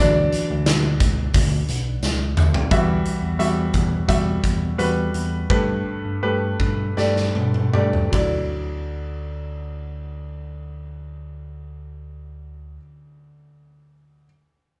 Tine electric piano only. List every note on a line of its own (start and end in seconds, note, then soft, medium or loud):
0.00 0.26 D2 loud
0.50 0.64 D2 loud
0.66 0.94 D2 loud
1.01 1.28 C#2 medium
1.34 1.62 D2 loud
1.69 1.97 B1 medium
2.03 2.31 C#2 loud
2.37 2.65 D2 medium
2.71 2.99 E2 medium
3.22 3.36 E2 medium
3.40 3.68 E2 medium
3.74 4.02 E2 medium
4.08 4.37 E2 medium
4.44 4.72 E2 medium
4.79 5.08 E2 medium
5.14 5.43 E2 medium
5.50 5.79 G2 medium
6.05 6.19 G2 medium
6.23 6.53 G2 medium
6.60 6.90 G2 medium
6.98 7.29 G2 medium
7.36 7.67 G2 medium
7.75 8.06 G2 medium
8.13 12.76 D2 medium